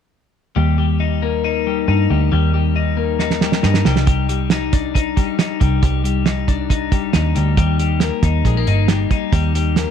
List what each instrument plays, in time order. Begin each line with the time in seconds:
0.56 picked electric bass D#2, clean electric guitar G3
0.78 clean electric guitar G3
1.00 clean electric guitar D#4
1.22 clean electric guitar A#3
1.44 clean electric guitar D#4
1.67 clean electric guitar G3
1.88 picked electric bass G2, clean electric guitar D#4
2.10 picked electric bass D2, clean electric guitar G3
2.32 picked electric bass D#2, clean electric guitar G3
2.54 clean electric guitar G3
2.76 clean electric guitar D#4
2.97 clean electric guitar A#3
3.19 clean electric guitar D#4, snare
3.30 snare
3.41 clean electric guitar G3, snare
3.52 snare
3.63 picked electric bass G2, clean electric guitar D#4, snare
3.74 snare
3.85 picked electric bass C2, clean electric guitar G3, snare
3.96 snare
4.07 clean electric guitar G3, kick, closed hi-hat
4.29 clean electric guitar G3, closed hi-hat
4.50 clean electric guitar D#4, snare, closed hi-hat
4.73 clean electric guitar D4, kick, closed hi-hat
4.95 clean electric guitar D#4, kick, closed hi-hat
5.17 clean electric guitar G3, kick, closed hi-hat
5.39 clean electric guitar D#4, snare, closed hi-hat
5.60 picked electric bass C2, clean electric guitar G3, kick, closed hi-hat
5.82 picked electric bass C2, clean electric guitar G3, kick, closed hi-hat
6.04 clean electric guitar G3, closed hi-hat
6.26 clean electric guitar D#4, snare, closed hi-hat
6.48 clean electric guitar D4, kick, closed hi-hat
6.70 clean electric guitar D#4, kick, closed hi-hat
6.92 clean electric guitar G3, kick, closed hi-hat
7.13 picked electric bass D#2, clean electric guitar D#4, snare, closed hi-hat
7.35 picked electric bass D2, clean electric guitar G3, closed hi-hat
7.57 picked electric bass D#2, clean electric guitar G3, kick, closed hi-hat
7.79 clean electric guitar G3, closed hi-hat
8.00 clean electric guitar A#3, snare, closed hi-hat
8.22 picked electric bass D#2, clean electric guitar D#4, kick, snare, closed hi-hat
8.45 picked electric bass A#1, clean electric guitar G#3, kick, closed hi-hat
8.57 clean electric guitar A#3
8.67 picked electric bass G1, clean electric guitar D#4, closed hi-hat
8.88 clean electric guitar G3, snare, closed hi-hat
9.11 clean electric guitar D#4, kick, closed hi-hat
9.33 picked electric bass D#2, clean electric guitar G3, kick, closed hi-hat
9.55 clean electric guitar G3, closed hi-hat
9.76 clean electric guitar A#3, snare, closed hi-hat